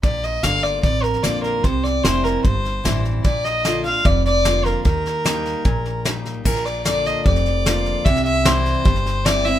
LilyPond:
<<
  \new Staff \with { instrumentName = "Fiddle" } { \time 4/4 \key bes \major \tempo 4 = 150 d''8 ees''8 f''8 d''8 d''8 bes'8 d''8 bes'8 | c''8 d''8 c''8 bes'8 c''4. r8 | d''8 ees''4 f''8 d''8 d''4 bes'8 | bes'2. r4 |
bes'8 d''8 d''8 ees''8 d''2 | e''8 e''8 c''2 d''8 e''8 | }
  \new Staff \with { instrumentName = "Steel-string acoustic guitar" } { \time 4/4 \key bes \major << { r4 <d bes d' f'>4 r4 <d bes d' f'>4 | r4 <e g c' e'>4 r4 <e g c' e'>4 | r4 <d bes d' f'>8 <d' f'>8 r4 <d bes d' f'>4 | r4 <g bes ees' g'>4 r4 <g bes ees' g'>4 |
r4 <d bes d' f'>4 r4 <d bes d' f'>4 | r4 <e g c' e'>4 r4 <e g c' e'>8 <c' e'>8 | } \\ { bes,2 f,2 | c2 g,2 | bes,2 f,2 | ees2 bes,2 |
bes,2 f,2 | c2 g,2 | } >> }
  \new Staff \with { instrumentName = "Upright bass" } { \clef bass \time 4/4 \key bes \major bes,,4 g,,4 a,,4 bes,,4 | c,4 f,,4 g,,4 a,,4 | bes,,2 f,,2 | ees,2 bes,,2 |
bes,,2 f,,2 | c,2 g,,2 | }
  \new DrumStaff \with { instrumentName = "Drums" } \drummode { \time 4/4 <bd sn>8 sn8 <hhp sn>8 sn8 <bd sn>8 sn16 sn16 <hhp sn>8 sn8 | <bd sn>8 sn8 <hhp sn>8 sn8 <bd sn>8 sn8 <hhp sn>8 sn8 | <bd sn>8 sn8 <hhp sn>8 sn8 <bd sn>8 sn8 <hhp sn>8 sn8 | <bd sn>8 sn8 <hhp sn>8 sn8 <bd sn>8 sn8 <hhp sn>8 sn8 |
<cymc bd sn>16 sn16 sn8 <hhp sn>8 sn8 <bd sn>16 sn16 sn8 <hhp sn>8 sn8 | <bd sn>16 sn16 sn8 <hhp sn>8 sn8 <bd sn>16 sn16 sn8 <hhp sn>8 sn8 | }
>>